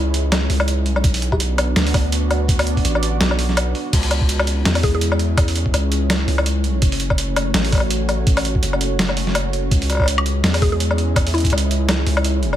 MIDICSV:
0, 0, Header, 1, 5, 480
1, 0, Start_track
1, 0, Tempo, 361446
1, 1380, Time_signature, 4, 2, 24, 8
1, 16688, End_track
2, 0, Start_track
2, 0, Title_t, "Synth pluck"
2, 0, Program_c, 0, 84
2, 0, Note_on_c, 0, 64, 93
2, 379, Note_off_c, 0, 64, 0
2, 6422, Note_on_c, 0, 68, 92
2, 6508, Note_off_c, 0, 68, 0
2, 6567, Note_on_c, 0, 68, 82
2, 6628, Note_off_c, 0, 68, 0
2, 14103, Note_on_c, 0, 68, 92
2, 14189, Note_off_c, 0, 68, 0
2, 14238, Note_on_c, 0, 68, 81
2, 14303, Note_off_c, 0, 68, 0
2, 15057, Note_on_c, 0, 64, 88
2, 15737, Note_off_c, 0, 64, 0
2, 16688, End_track
3, 0, Start_track
3, 0, Title_t, "Analog synth pad"
3, 0, Program_c, 1, 89
3, 0, Note_on_c, 1, 56, 66
3, 0, Note_on_c, 1, 61, 83
3, 0, Note_on_c, 1, 64, 75
3, 0, Note_on_c, 1, 73, 86
3, 1378, Note_off_c, 1, 56, 0
3, 1378, Note_off_c, 1, 73, 0
3, 1381, Note_on_c, 1, 59, 82
3, 1383, Note_off_c, 1, 61, 0
3, 1538, Note_on_c, 1, 62, 69
3, 1594, Note_on_c, 1, 66, 89
3, 2094, Note_off_c, 1, 64, 0
3, 3051, Note_on_c, 1, 74, 89
3, 5218, Note_off_c, 1, 74, 0
3, 5220, Note_off_c, 1, 62, 0
3, 5223, Note_on_c, 1, 56, 82
3, 5391, Note_on_c, 1, 64, 81
3, 5411, Note_on_c, 1, 61, 76
3, 6485, Note_off_c, 1, 66, 0
3, 6635, Note_on_c, 1, 73, 81
3, 6770, Note_off_c, 1, 59, 0
3, 9061, Note_off_c, 1, 56, 0
3, 9064, Note_on_c, 1, 57, 88
3, 9476, Note_on_c, 1, 66, 79
3, 10182, Note_off_c, 1, 64, 0
3, 12897, Note_on_c, 1, 56, 89
3, 12902, Note_off_c, 1, 57, 0
3, 14025, Note_on_c, 1, 64, 68
3, 14448, Note_off_c, 1, 66, 0
3, 16688, Note_off_c, 1, 56, 0
3, 16688, Note_off_c, 1, 61, 0
3, 16688, Note_off_c, 1, 64, 0
3, 16688, Note_off_c, 1, 73, 0
3, 16688, End_track
4, 0, Start_track
4, 0, Title_t, "808-style bass"
4, 0, Program_c, 2, 38
4, 0, Note_on_c, 2, 37, 96
4, 645, Note_off_c, 2, 37, 0
4, 661, Note_on_c, 2, 37, 101
4, 1364, Note_off_c, 2, 37, 0
4, 1382, Note_on_c, 2, 35, 99
4, 2324, Note_off_c, 2, 35, 0
4, 2341, Note_on_c, 2, 38, 95
4, 3764, Note_off_c, 2, 38, 0
4, 3781, Note_on_c, 2, 33, 97
4, 4244, Note_off_c, 2, 33, 0
4, 4263, Note_on_c, 2, 35, 99
4, 4965, Note_off_c, 2, 35, 0
4, 5220, Note_on_c, 2, 37, 101
4, 6163, Note_off_c, 2, 37, 0
4, 6181, Note_on_c, 2, 40, 97
4, 7604, Note_off_c, 2, 40, 0
4, 7618, Note_on_c, 2, 37, 103
4, 8322, Note_off_c, 2, 37, 0
4, 8335, Note_on_c, 2, 37, 103
4, 9041, Note_off_c, 2, 37, 0
4, 9059, Note_on_c, 2, 30, 103
4, 10003, Note_off_c, 2, 30, 0
4, 10019, Note_on_c, 2, 33, 96
4, 11443, Note_off_c, 2, 33, 0
4, 11462, Note_on_c, 2, 30, 98
4, 12885, Note_off_c, 2, 30, 0
4, 12900, Note_on_c, 2, 37, 99
4, 13844, Note_off_c, 2, 37, 0
4, 13859, Note_on_c, 2, 40, 98
4, 15283, Note_off_c, 2, 40, 0
4, 15299, Note_on_c, 2, 37, 103
4, 16003, Note_off_c, 2, 37, 0
4, 16022, Note_on_c, 2, 37, 102
4, 16688, Note_off_c, 2, 37, 0
4, 16688, End_track
5, 0, Start_track
5, 0, Title_t, "Drums"
5, 185, Note_on_c, 9, 42, 66
5, 318, Note_off_c, 9, 42, 0
5, 424, Note_on_c, 9, 38, 113
5, 424, Note_on_c, 9, 42, 75
5, 424, Note_on_c, 9, 77, 52
5, 557, Note_off_c, 9, 38, 0
5, 557, Note_off_c, 9, 42, 0
5, 557, Note_off_c, 9, 77, 0
5, 661, Note_on_c, 9, 46, 72
5, 794, Note_off_c, 9, 46, 0
5, 795, Note_on_c, 9, 77, 79
5, 900, Note_on_c, 9, 42, 72
5, 928, Note_off_c, 9, 77, 0
5, 1033, Note_off_c, 9, 42, 0
5, 1139, Note_on_c, 9, 42, 35
5, 1272, Note_off_c, 9, 42, 0
5, 1276, Note_on_c, 9, 77, 54
5, 1379, Note_on_c, 9, 36, 116
5, 1381, Note_on_c, 9, 42, 82
5, 1408, Note_off_c, 9, 77, 0
5, 1512, Note_off_c, 9, 36, 0
5, 1514, Note_off_c, 9, 42, 0
5, 1515, Note_on_c, 9, 46, 67
5, 1622, Note_on_c, 9, 42, 61
5, 1648, Note_off_c, 9, 46, 0
5, 1755, Note_off_c, 9, 42, 0
5, 1755, Note_on_c, 9, 36, 59
5, 1756, Note_on_c, 9, 77, 55
5, 1860, Note_on_c, 9, 42, 77
5, 1888, Note_off_c, 9, 36, 0
5, 1889, Note_off_c, 9, 77, 0
5, 1992, Note_off_c, 9, 42, 0
5, 2100, Note_on_c, 9, 42, 64
5, 2100, Note_on_c, 9, 77, 85
5, 2233, Note_off_c, 9, 42, 0
5, 2233, Note_off_c, 9, 77, 0
5, 2339, Note_on_c, 9, 38, 113
5, 2339, Note_on_c, 9, 42, 79
5, 2472, Note_off_c, 9, 38, 0
5, 2472, Note_off_c, 9, 42, 0
5, 2478, Note_on_c, 9, 46, 70
5, 2579, Note_off_c, 9, 46, 0
5, 2579, Note_on_c, 9, 36, 103
5, 2579, Note_on_c, 9, 46, 73
5, 2579, Note_on_c, 9, 77, 57
5, 2711, Note_off_c, 9, 36, 0
5, 2712, Note_off_c, 9, 46, 0
5, 2712, Note_off_c, 9, 77, 0
5, 2820, Note_on_c, 9, 42, 79
5, 2953, Note_off_c, 9, 42, 0
5, 3062, Note_on_c, 9, 42, 36
5, 3062, Note_on_c, 9, 77, 54
5, 3195, Note_off_c, 9, 42, 0
5, 3195, Note_off_c, 9, 77, 0
5, 3299, Note_on_c, 9, 36, 117
5, 3305, Note_on_c, 9, 42, 84
5, 3432, Note_off_c, 9, 36, 0
5, 3438, Note_off_c, 9, 42, 0
5, 3442, Note_on_c, 9, 46, 69
5, 3442, Note_on_c, 9, 77, 81
5, 3543, Note_on_c, 9, 42, 61
5, 3575, Note_off_c, 9, 46, 0
5, 3575, Note_off_c, 9, 77, 0
5, 3676, Note_off_c, 9, 42, 0
5, 3676, Note_on_c, 9, 36, 62
5, 3682, Note_on_c, 9, 46, 37
5, 3783, Note_on_c, 9, 42, 82
5, 3808, Note_off_c, 9, 36, 0
5, 3814, Note_off_c, 9, 46, 0
5, 3915, Note_off_c, 9, 42, 0
5, 3920, Note_on_c, 9, 77, 53
5, 4020, Note_on_c, 9, 42, 66
5, 4053, Note_off_c, 9, 77, 0
5, 4153, Note_off_c, 9, 42, 0
5, 4257, Note_on_c, 9, 38, 116
5, 4257, Note_on_c, 9, 42, 79
5, 4390, Note_off_c, 9, 38, 0
5, 4390, Note_off_c, 9, 42, 0
5, 4395, Note_on_c, 9, 77, 55
5, 4498, Note_on_c, 9, 46, 75
5, 4528, Note_off_c, 9, 77, 0
5, 4631, Note_off_c, 9, 46, 0
5, 4636, Note_on_c, 9, 38, 36
5, 4741, Note_on_c, 9, 42, 79
5, 4741, Note_on_c, 9, 77, 85
5, 4769, Note_off_c, 9, 38, 0
5, 4874, Note_off_c, 9, 42, 0
5, 4874, Note_off_c, 9, 77, 0
5, 4980, Note_on_c, 9, 46, 38
5, 5113, Note_off_c, 9, 46, 0
5, 5218, Note_on_c, 9, 36, 123
5, 5220, Note_on_c, 9, 42, 86
5, 5220, Note_on_c, 9, 49, 77
5, 5351, Note_off_c, 9, 36, 0
5, 5352, Note_on_c, 9, 46, 67
5, 5353, Note_off_c, 9, 42, 0
5, 5353, Note_off_c, 9, 49, 0
5, 5456, Note_on_c, 9, 42, 61
5, 5456, Note_on_c, 9, 77, 53
5, 5485, Note_off_c, 9, 46, 0
5, 5589, Note_off_c, 9, 42, 0
5, 5589, Note_off_c, 9, 77, 0
5, 5594, Note_on_c, 9, 36, 61
5, 5697, Note_on_c, 9, 42, 82
5, 5727, Note_off_c, 9, 36, 0
5, 5830, Note_off_c, 9, 42, 0
5, 5836, Note_on_c, 9, 77, 81
5, 5938, Note_on_c, 9, 42, 68
5, 5968, Note_off_c, 9, 77, 0
5, 6071, Note_off_c, 9, 42, 0
5, 6181, Note_on_c, 9, 38, 118
5, 6181, Note_on_c, 9, 42, 83
5, 6311, Note_on_c, 9, 46, 66
5, 6311, Note_on_c, 9, 77, 59
5, 6314, Note_off_c, 9, 38, 0
5, 6314, Note_off_c, 9, 42, 0
5, 6417, Note_on_c, 9, 36, 111
5, 6419, Note_off_c, 9, 46, 0
5, 6419, Note_on_c, 9, 46, 70
5, 6444, Note_off_c, 9, 77, 0
5, 6550, Note_off_c, 9, 36, 0
5, 6552, Note_off_c, 9, 46, 0
5, 6658, Note_on_c, 9, 42, 80
5, 6791, Note_off_c, 9, 42, 0
5, 6795, Note_on_c, 9, 77, 59
5, 6898, Note_on_c, 9, 42, 38
5, 6928, Note_off_c, 9, 77, 0
5, 7030, Note_off_c, 9, 42, 0
5, 7136, Note_on_c, 9, 36, 127
5, 7138, Note_on_c, 9, 42, 87
5, 7138, Note_on_c, 9, 77, 82
5, 7269, Note_off_c, 9, 36, 0
5, 7271, Note_off_c, 9, 42, 0
5, 7271, Note_off_c, 9, 77, 0
5, 7277, Note_on_c, 9, 46, 64
5, 7377, Note_on_c, 9, 42, 64
5, 7410, Note_off_c, 9, 46, 0
5, 7510, Note_off_c, 9, 42, 0
5, 7513, Note_on_c, 9, 36, 64
5, 7620, Note_on_c, 9, 42, 84
5, 7620, Note_on_c, 9, 77, 53
5, 7646, Note_off_c, 9, 36, 0
5, 7753, Note_off_c, 9, 42, 0
5, 7753, Note_off_c, 9, 77, 0
5, 7857, Note_on_c, 9, 42, 72
5, 7990, Note_off_c, 9, 42, 0
5, 8099, Note_on_c, 9, 38, 124
5, 8099, Note_on_c, 9, 42, 86
5, 8099, Note_on_c, 9, 77, 52
5, 8232, Note_off_c, 9, 38, 0
5, 8232, Note_off_c, 9, 42, 0
5, 8232, Note_off_c, 9, 77, 0
5, 8339, Note_on_c, 9, 46, 68
5, 8472, Note_off_c, 9, 46, 0
5, 8475, Note_on_c, 9, 77, 83
5, 8580, Note_on_c, 9, 42, 80
5, 8608, Note_off_c, 9, 77, 0
5, 8712, Note_off_c, 9, 42, 0
5, 8818, Note_on_c, 9, 42, 38
5, 8950, Note_off_c, 9, 42, 0
5, 9056, Note_on_c, 9, 42, 84
5, 9057, Note_on_c, 9, 36, 127
5, 9188, Note_off_c, 9, 42, 0
5, 9190, Note_off_c, 9, 36, 0
5, 9193, Note_on_c, 9, 46, 63
5, 9293, Note_on_c, 9, 42, 64
5, 9326, Note_off_c, 9, 46, 0
5, 9426, Note_off_c, 9, 42, 0
5, 9431, Note_on_c, 9, 77, 51
5, 9433, Note_on_c, 9, 36, 69
5, 9536, Note_on_c, 9, 42, 82
5, 9564, Note_off_c, 9, 77, 0
5, 9566, Note_off_c, 9, 36, 0
5, 9668, Note_off_c, 9, 42, 0
5, 9780, Note_on_c, 9, 42, 69
5, 9780, Note_on_c, 9, 77, 79
5, 9913, Note_off_c, 9, 42, 0
5, 9913, Note_off_c, 9, 77, 0
5, 10016, Note_on_c, 9, 38, 126
5, 10016, Note_on_c, 9, 42, 84
5, 10148, Note_off_c, 9, 38, 0
5, 10148, Note_off_c, 9, 42, 0
5, 10153, Note_on_c, 9, 46, 66
5, 10258, Note_off_c, 9, 46, 0
5, 10258, Note_on_c, 9, 36, 118
5, 10258, Note_on_c, 9, 46, 68
5, 10258, Note_on_c, 9, 77, 25
5, 10292, Note_off_c, 9, 77, 0
5, 10292, Note_on_c, 9, 77, 33
5, 10328, Note_off_c, 9, 77, 0
5, 10328, Note_on_c, 9, 77, 37
5, 10361, Note_off_c, 9, 77, 0
5, 10361, Note_on_c, 9, 77, 46
5, 10391, Note_off_c, 9, 36, 0
5, 10391, Note_off_c, 9, 46, 0
5, 10494, Note_off_c, 9, 77, 0
5, 10498, Note_on_c, 9, 42, 81
5, 10630, Note_off_c, 9, 42, 0
5, 10740, Note_on_c, 9, 42, 40
5, 10740, Note_on_c, 9, 77, 52
5, 10872, Note_off_c, 9, 42, 0
5, 10872, Note_off_c, 9, 77, 0
5, 10979, Note_on_c, 9, 36, 127
5, 10979, Note_on_c, 9, 42, 78
5, 11112, Note_off_c, 9, 36, 0
5, 11112, Note_off_c, 9, 42, 0
5, 11115, Note_on_c, 9, 46, 65
5, 11115, Note_on_c, 9, 77, 73
5, 11221, Note_on_c, 9, 42, 59
5, 11247, Note_off_c, 9, 46, 0
5, 11247, Note_off_c, 9, 77, 0
5, 11353, Note_off_c, 9, 42, 0
5, 11355, Note_on_c, 9, 36, 65
5, 11457, Note_on_c, 9, 42, 82
5, 11488, Note_off_c, 9, 36, 0
5, 11590, Note_off_c, 9, 42, 0
5, 11595, Note_on_c, 9, 77, 50
5, 11697, Note_on_c, 9, 42, 67
5, 11728, Note_off_c, 9, 77, 0
5, 11830, Note_off_c, 9, 42, 0
5, 11940, Note_on_c, 9, 38, 126
5, 11940, Note_on_c, 9, 42, 78
5, 12071, Note_on_c, 9, 77, 51
5, 12073, Note_off_c, 9, 38, 0
5, 12073, Note_off_c, 9, 42, 0
5, 12175, Note_on_c, 9, 46, 69
5, 12204, Note_off_c, 9, 77, 0
5, 12308, Note_off_c, 9, 46, 0
5, 12313, Note_on_c, 9, 38, 40
5, 12417, Note_on_c, 9, 42, 75
5, 12417, Note_on_c, 9, 77, 75
5, 12445, Note_off_c, 9, 38, 0
5, 12550, Note_off_c, 9, 42, 0
5, 12550, Note_off_c, 9, 77, 0
5, 12659, Note_on_c, 9, 42, 37
5, 12792, Note_off_c, 9, 42, 0
5, 12899, Note_on_c, 9, 36, 123
5, 12901, Note_on_c, 9, 42, 76
5, 13032, Note_off_c, 9, 36, 0
5, 13034, Note_off_c, 9, 42, 0
5, 13039, Note_on_c, 9, 46, 66
5, 13143, Note_on_c, 9, 42, 61
5, 13143, Note_on_c, 9, 77, 23
5, 13172, Note_off_c, 9, 46, 0
5, 13179, Note_off_c, 9, 77, 0
5, 13179, Note_on_c, 9, 77, 27
5, 13212, Note_off_c, 9, 77, 0
5, 13212, Note_on_c, 9, 77, 29
5, 13242, Note_off_c, 9, 77, 0
5, 13242, Note_on_c, 9, 77, 32
5, 13275, Note_off_c, 9, 42, 0
5, 13275, Note_on_c, 9, 36, 61
5, 13276, Note_off_c, 9, 77, 0
5, 13276, Note_on_c, 9, 77, 37
5, 13303, Note_off_c, 9, 77, 0
5, 13303, Note_on_c, 9, 77, 38
5, 13327, Note_off_c, 9, 77, 0
5, 13327, Note_on_c, 9, 77, 41
5, 13356, Note_off_c, 9, 77, 0
5, 13356, Note_on_c, 9, 77, 45
5, 13382, Note_on_c, 9, 42, 78
5, 13408, Note_off_c, 9, 36, 0
5, 13489, Note_off_c, 9, 77, 0
5, 13515, Note_off_c, 9, 42, 0
5, 13519, Note_on_c, 9, 77, 76
5, 13623, Note_on_c, 9, 42, 64
5, 13652, Note_off_c, 9, 77, 0
5, 13756, Note_off_c, 9, 42, 0
5, 13862, Note_on_c, 9, 38, 118
5, 13862, Note_on_c, 9, 42, 74
5, 13995, Note_off_c, 9, 38, 0
5, 13995, Note_off_c, 9, 42, 0
5, 13999, Note_on_c, 9, 46, 69
5, 13999, Note_on_c, 9, 77, 53
5, 14099, Note_on_c, 9, 36, 113
5, 14103, Note_off_c, 9, 46, 0
5, 14103, Note_on_c, 9, 46, 70
5, 14132, Note_off_c, 9, 77, 0
5, 14232, Note_off_c, 9, 36, 0
5, 14236, Note_off_c, 9, 46, 0
5, 14346, Note_on_c, 9, 42, 76
5, 14479, Note_off_c, 9, 42, 0
5, 14483, Note_on_c, 9, 77, 54
5, 14584, Note_on_c, 9, 42, 34
5, 14616, Note_off_c, 9, 77, 0
5, 14717, Note_off_c, 9, 42, 0
5, 14820, Note_on_c, 9, 36, 123
5, 14823, Note_on_c, 9, 42, 75
5, 14823, Note_on_c, 9, 77, 82
5, 14953, Note_off_c, 9, 36, 0
5, 14956, Note_off_c, 9, 42, 0
5, 14956, Note_off_c, 9, 77, 0
5, 14961, Note_on_c, 9, 46, 72
5, 15068, Note_on_c, 9, 42, 26
5, 15094, Note_off_c, 9, 46, 0
5, 15111, Note_off_c, 9, 42, 0
5, 15111, Note_on_c, 9, 42, 31
5, 15144, Note_off_c, 9, 42, 0
5, 15144, Note_on_c, 9, 42, 36
5, 15196, Note_on_c, 9, 36, 63
5, 15202, Note_off_c, 9, 42, 0
5, 15202, Note_on_c, 9, 42, 42
5, 15225, Note_off_c, 9, 42, 0
5, 15225, Note_on_c, 9, 42, 45
5, 15272, Note_off_c, 9, 42, 0
5, 15272, Note_on_c, 9, 42, 50
5, 15308, Note_on_c, 9, 77, 54
5, 15329, Note_off_c, 9, 36, 0
5, 15373, Note_off_c, 9, 42, 0
5, 15373, Note_on_c, 9, 42, 77
5, 15441, Note_off_c, 9, 77, 0
5, 15506, Note_off_c, 9, 42, 0
5, 15549, Note_on_c, 9, 42, 65
5, 15682, Note_off_c, 9, 42, 0
5, 15785, Note_on_c, 9, 38, 110
5, 15785, Note_on_c, 9, 42, 71
5, 15785, Note_on_c, 9, 77, 52
5, 15917, Note_off_c, 9, 38, 0
5, 15917, Note_off_c, 9, 42, 0
5, 15917, Note_off_c, 9, 77, 0
5, 16023, Note_on_c, 9, 46, 74
5, 16155, Note_off_c, 9, 46, 0
5, 16160, Note_on_c, 9, 77, 80
5, 16261, Note_on_c, 9, 42, 77
5, 16292, Note_off_c, 9, 77, 0
5, 16394, Note_off_c, 9, 42, 0
5, 16503, Note_on_c, 9, 42, 34
5, 16635, Note_off_c, 9, 42, 0
5, 16638, Note_on_c, 9, 77, 51
5, 16688, Note_off_c, 9, 77, 0
5, 16688, End_track
0, 0, End_of_file